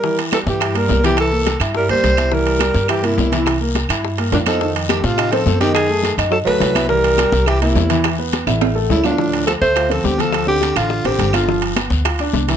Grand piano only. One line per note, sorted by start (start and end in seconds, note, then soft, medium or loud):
0.03 0.27 E3 medium
0.03 0.27 E4 medium
0.32 0.56 G3 medium
0.32 0.56 G4 medium
0.61 0.73 E4 medium
0.61 0.73 E5 medium
0.75 0.98 A#3 medium
0.75 0.98 A#4 medium
1.03 1.27 E3 medium
1.03 1.27 E4 medium
1.32 1.56 A#3 medium
1.32 1.56 A#4 medium
1.61 1.84 E4 medium
1.61 1.84 E5 medium
1.89 2.12 A#3 medium
1.89 2.13 A#4 medium
2.17 2.29 E4 medium
2.17 2.29 E5 medium
2.31 2.55 E3 medium
2.31 2.55 E4 medium
2.60 2.84 G3 medium
2.60 2.84 G4 medium
2.88 3.01 E4 medium
2.88 3.01 E5 medium
3.03 3.26 A#3 medium
3.03 3.27 A#4 medium
3.32 3.56 E3 medium
3.32 3.56 E4 medium
3.61 3.84 A#3 medium
3.61 3.85 A#4 medium
3.90 4.13 E4 medium
3.90 4.13 E5 medium
4.18 4.41 A#3 medium
4.18 4.42 A#4 medium
4.47 4.59 D#4 medium
4.47 4.59 D#5 medium
4.61 4.85 D#3 medium
4.61 4.85 D#4 medium
4.90 5.13 A3 medium
4.90 5.13 A4 medium
5.18 5.30 D#4 medium
5.18 5.30 D#5 medium
5.33 5.56 C4 medium
5.33 5.56 C5 medium
5.61 5.85 D#3 medium
5.61 5.85 D#4 medium
5.90 6.13 A3 medium
5.90 6.13 A4 medium
6.18 6.42 D#4 medium
6.18 6.42 D#5 medium
6.46 6.70 A3 medium
6.46 6.71 A4 medium
6.75 6.87 E4 medium
6.75 6.87 E5 medium
6.90 7.13 E3 medium
6.90 7.14 E4 medium
7.19 7.42 G3 medium
7.19 7.43 G4 medium
7.47 7.59 E4 medium
7.47 7.59 E5 medium
7.62 7.85 A#3 medium
7.62 7.85 A#4 medium
7.90 8.13 E3 medium
7.90 8.14 E4 medium
8.19 8.42 B3 medium
8.19 8.42 B4 medium
8.47 8.71 E4 medium
8.47 8.71 E5 medium
8.75 8.99 A3 medium
8.75 8.99 A4 medium
9.04 9.16 F4 medium
9.04 9.16 F5 medium
9.18 9.42 F3 medium
9.18 9.42 F4 medium
9.46 9.70 A3 medium
9.46 9.71 A4 medium
9.76 9.88 F4 medium
9.76 9.88 F5 medium
9.90 10.13 C4 medium
9.90 10.14 C5 medium
10.18 10.42 F3 medium
10.18 10.42 F4 medium
10.47 10.71 C4 medium
10.47 10.71 C5 medium
10.76 11.00 F4 medium
10.76 11.00 F5 medium
11.05 11.29 C4 medium
11.05 11.29 C5 medium
11.33 11.45 F4 medium
11.33 11.45 F5 medium
11.48 11.71 F3 medium
11.48 11.71 F4 medium
11.77 12.00 B3 medium
11.77 12.00 B4 medium
12.06 12.17 F4 medium
12.06 12.17 F5 medium
12.20 12.43 D4 medium
12.20 12.43 D5 medium
12.49 12.57 E3 medium
12.49 12.57 E4 medium